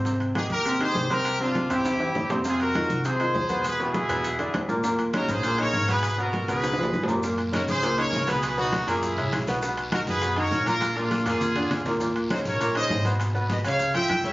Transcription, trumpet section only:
X:1
M:4/4
L:1/8
Q:1/4=201
K:Abmix
V:1 name="Trumpet section"
z2 [EA] [=GB]2 [Ac]2 [GB]- | [=GB] [=DF]2 [=EG]4 z | [FA] [GB]3 [Ac]4 | [^G=B] [=EG]6 z |
z2 [GB] [Ac]2 [Bd]2 [A_c]- | [A_c] [GB]2 [Ac]4 z | z2 [GB] [Ac]2 [Bd]2 [A_c]- | [A_c] [EG]2 [_FA]4 z |
z2 [^FB] [^G=B]2 [_B^c]2 [=FB]- | [FB] [=DF]2 [FA]4 z | z2 [Gc] [Bd]2 [ce]2 [Ac] | z2 [_ce] [df]2 [=e=g]2 [de] |]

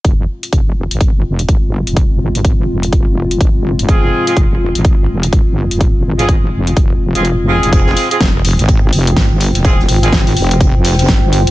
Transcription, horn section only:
X:1
M:4/4
L:1/16
Q:"Swing 16ths" 1/4=125
K:Fm
V:1 name="Horn section"
z16 | z16 | [A,CFA]3 [A,CFA] z12 | z3 [A,CFA] z6 z [A,CFA] z2 [A,CFA]2 |
[A,CFA]3 [A,CFA] z12 | [A,CFA] z2 [A,CFA] z12 |]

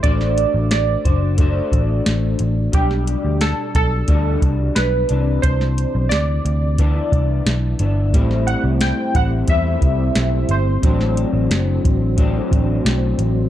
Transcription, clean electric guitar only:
X:1
M:4/4
L:1/8
Q:1/4=89
K:Dmix
V:1 name="Clean electric guitar"
[A,DFc]3 [DFc] [A,DFc]4 | [B,,G,D]4 [B,,G,DF]3 [C,E,D]- | [C,E,D]4 [E,B,D]3 [E,B,D] | [A,,G,CE]3 [G,CE] [A,,G,CE]4 |
[A,,F,CD]4 [A,,F,CD]4 |]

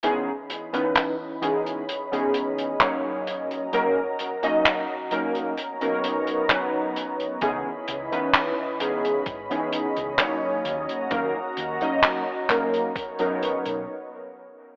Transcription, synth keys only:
X:1
M:4/4
L:1/16
Q:1/4=65
K:C#dor
V:1 name="Synth keys"
[E,B,CDG] z2 [E,B,CDB]2 z [E,B,CDG]2 z [E,B,CDG]3 [F,A,CDc]4 | [F,A,CDA] z2 [F,A,CDd]2 z [F,A,CDA]2 z [F,B,CDA]3 [F,B,CDB]4 | [E,B,CDG] z2 [E,B,CDB]2 z [E,B,CDG]2 z [E,B,CDG]3 [F,A,CDc]4 | [F,A,CDA] z2 [F,A,CDd]2 z [F,A,CDA]2 z [F,B,CDA]3 z4 |]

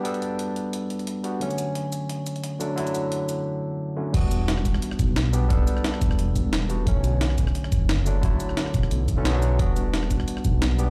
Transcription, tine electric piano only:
X:1
M:4/4
L:1/16
Q:"Swing 16ths" 1/4=176
K:Edor
V:1 name="Tine electric piano"
[G,B,DA]12- [G,B,DA]2 [G,B,DF]2 | [D,F,A,C]12- [D,F,A,C]2 [D,F,A,D]2 | [D,F,A,E]12- [D,F,A,E]2 [D,F,A,C]2 | [G,B,DF]12- [G,B,DF]2 [G,B,DG]2 |
[G,B,DA]12- [G,B,DA]2 [G,B,DF]2 | [D,F,A,C]12- [D,F,A,C]2 [D,F,A,D]2 | [D,F,A,E]8- [D,F,A,E]3 [D,F,A,C] [D,F,A,B,] [D,F,A,D]3 | [G,B,DF]12- [G,B,DF]2 [G,B,DG]2 |]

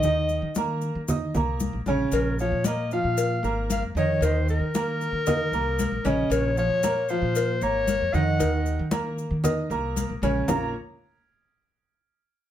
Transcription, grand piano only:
X:1
M:4/4
L:1/8
Q:1/4=115
K:Bbm
V:1 name="Grand piano"
[E,Ee]2 [B,Bb]2 [Eee'] [B,Bb]2 [D,Dd]- | [D,Dd] [F,Ff] [B,Bb] [F,Ff]2 [B,Bb]2 [E,Ee] | [E,Ee]2 [B,Bb]2 [Eee'] [B,Bb]2 [D,Dd]- | [D,Dd] [F,Ff] [B,Bb] [F,Ff]2 [B,Bb]2 [E,Ee] |
[E,Ee]2 [B,Bb]2 [Eee'] [B,Bb]2 [D,Dd] | [B,FBdfb] z6 z |]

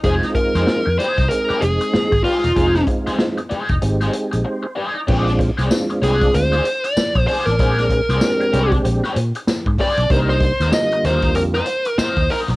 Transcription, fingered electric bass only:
X:1
M:4/4
L:1/16
Q:"Swing 16ths" 1/4=96
K:Bbmix
V:1 name="Fingered electric bass" clef=bass
F,,, z2 F,, z F,, z C,, z2 F,,, z2 A,,, z =E,,, | F,,,2 z4 z F,,, A,,,2 z B,,, z4 | B,,,3 C,, z2 C,,2 D,,2 z3 B,,, z =A,,, | B,,,3 C,, z2 C,,2 B,,, z B,, z2 A,, z =B,,, |
C,,3 E,, z2 E,,2 F,,2 z3 E,, z =B,,, |]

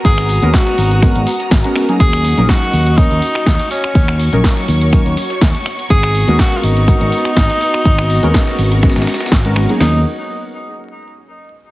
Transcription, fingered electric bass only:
X:1
M:4/4
L:1/16
Q:"Swing 16ths" 1/4=123
K:Ebm
V:1 name="Fingered electric bass" clef=bass
A,,,3 E,, z2 A,,,3 A,,, z2 A,,, z3 | E,,3 B,,, z2 E,,3 E,, z2 E,, z3 | E,,3 B,,, z2 E,,3 E,, z2 E,, z3 | A,,,3 E,, z2 A,,,3 A,,, z2 A,,, z3 |
A,,,3 E,, z2 A,,,3 A,,, z2 A,,,3 z | E,,2 z12 z2 |]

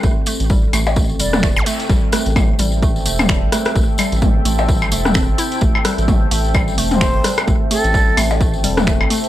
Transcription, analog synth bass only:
X:1
M:4/4
L:1/16
Q:"Swing 16ths" 1/4=129
K:Am
V:1 name="Analog synth bass" clef=bass
A,,, z2 A,,,2 z A,,,4 E,,,3 A,,, z2 | A,,, z2 A,,,2 z A,,,4 E,,,3 A,,, z2 | A,,, z2 A,,,2 z A,,,4 E,,,3 A,,, z2 | A,,, z2 A,,,2 z A,,,4 E,,,3 A,,, z2 |
A,,, z2 A,,,2 z A,,,4 E,,,3 A,,, z2 |]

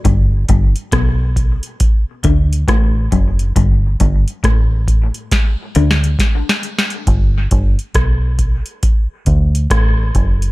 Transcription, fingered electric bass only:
X:1
M:4/4
L:1/16
Q:"Swing 16ths" 1/4=68
K:G
V:1 name="Fingered electric bass" clef=bass
G,,,2 G,,, z B,,,3 z3 D,,2 A,,,2 F,,,2 | G,,,2 G,,, z A,,,3 z3 D,,2 z4 | G,,,2 G,,, z B,,,3 z3 D,,2 A,,,2 F,,,2 |]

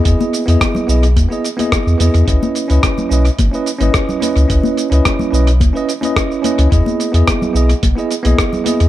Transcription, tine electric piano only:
X:1
M:4/4
L:1/16
Q:1/4=108
K:C#m
V:1 name="Tine electric piano"
[B,EGd]3 [B,EGd]3 [B,EGd] z2 [B,EGd] z [B,EGd]3 [B,EGd]2 | [CEBd]3 [CEBd]3 [CEBd] z2 [CEBd] z [CEBd]3 [CEBd]2 | [CEBd]3 [CEBd]3 [CEBd] z2 [CEBd] z [CEBd]3 [CEBd]2 | [B,EGd]3 [B,EGd]3 [B,EGd] z2 [B,EGd] z [B,EGd]3 [B,EGd]2 |]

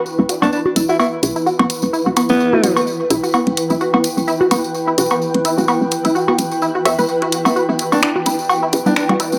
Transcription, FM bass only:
X:1
M:4/4
L:1/16
Q:"Swing 16ths" 1/4=128
K:Em
V:1 name="FM bass" clef=bass
z E,,, z E,,, z2 E,,, z3 B,,, z2 E,,, z E,,, | z E,,, z E,,, z2 E,,, z3 B,,, z2 E,,, z E,,, | z E,,, z E,,, z2 E,,, z3 B,,, z2 E,,, z E,,, | z E,,, z E,,, z2 E,,, z3 E,, D,,, z3 E,,, |
z E,,, z E,,, z2 E,,, z3 B,,, z2 E,,, z E,,, |]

